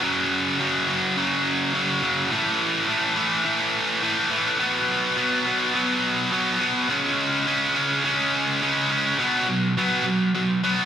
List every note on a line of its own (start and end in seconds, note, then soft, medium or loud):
0.02 0.58 F#2 loud
0.02 0.59 C#3 loud
0.02 0.59 F#3 loud
0.59 0.87 F#2 medium
0.59 0.88 C#3 medium
0.59 0.88 F#3 medium
0.88 1.16 F#2 medium
0.88 1.16 C#3 medium
0.88 1.17 F#3 loud
1.17 1.73 F#2 medium
1.17 1.74 C#3 loud
1.17 1.74 F#3 loud
1.74 2.01 F#2 medium
1.74 2.02 C#3 loud
1.74 2.02 F#3 loud
2.02 2.29 F#2 medium
2.02 2.30 C#3 medium
2.02 2.30 F#3 medium
2.31 2.87 A2 medium
2.31 2.88 E3 loud
2.31 2.88 A3 loud
2.88 3.15 A2 medium
2.88 3.16 E3 medium
2.88 3.16 A3 medium
3.16 3.44 A2 medium
3.16 3.44 E3 loud
3.16 3.44 A3 medium
3.45 4.01 A2 medium
3.45 4.02 E3 loud
3.45 4.02 A3 loud
4.02 4.29 A2 medium
4.02 4.30 E3 loud
4.02 4.30 A3 medium
4.30 4.58 A2 medium
4.30 4.58 E3 loud
4.30 4.58 A3 loud
4.60 5.15 B2 medium
4.60 5.16 F#3 loud
4.60 5.17 B3 loud
5.17 5.45 B2 medium
5.17 5.45 F#3 medium
5.17 5.46 B3 medium
5.46 5.73 B2 medium
5.46 5.74 F#3 medium
5.46 5.74 B3 loud
5.74 6.31 B2 loud
5.74 6.31 F#3 loud
5.74 6.32 B3 loud
6.32 6.59 B2 medium
6.32 6.59 F#3 loud
6.32 6.60 B3 medium
6.60 6.87 B2 medium
6.60 6.87 F#3 medium
6.60 6.88 B3 loud
6.89 7.45 C#3 loud
6.89 7.46 G#3 loud
6.89 7.46 C#4 loud
7.46 7.74 C#3 medium
7.46 7.74 G#3 medium
7.46 7.75 C#4 loud
7.75 8.03 C#3 medium
7.75 8.04 G#3 medium
7.75 8.04 C#4 medium
8.04 8.60 C#3 medium
8.04 8.61 G#3 loud
8.04 8.61 C#4 loud
8.61 8.89 C#3 medium
8.61 8.90 G#3 medium
8.61 8.90 C#4 loud
8.90 9.17 C#3 medium
8.90 9.18 G#3 medium
8.90 9.18 C#4 medium
9.19 9.46 B2 medium
9.19 9.46 F#3 medium
9.19 9.46 B3 medium
9.48 9.74 B2 medium
9.48 9.74 F#3 medium
9.78 10.04 B2 medium
9.78 10.04 F#3 medium
9.78 10.05 B3 medium
10.06 10.31 B2 medium
10.06 10.32 F#3 medium
10.35 10.60 B2 medium
10.35 10.61 F#3 medium
10.64 10.85 B2 medium
10.64 10.85 F#3 medium
10.64 10.85 B3 medium